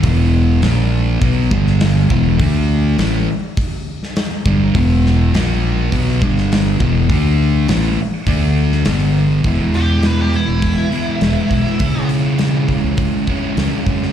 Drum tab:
HH |o---o---o---o---|o---o---o---o---|o---o---o---o---|o---o---o---o---|
SD |----o------oo---|----o------oo---|--o-o------oo---|----o------oo---|
BD |o-------o-o---o-|o-------o-----o-|o-------o-o---o-|o-------o-------|

HH |o-o-o-o-o-o-o-o-|o-o-o-o-o-o-o-o-|
SD |----o-------o---|----o-------o--o|
BD |o-------o-----o-|o-----o-o-o---o-|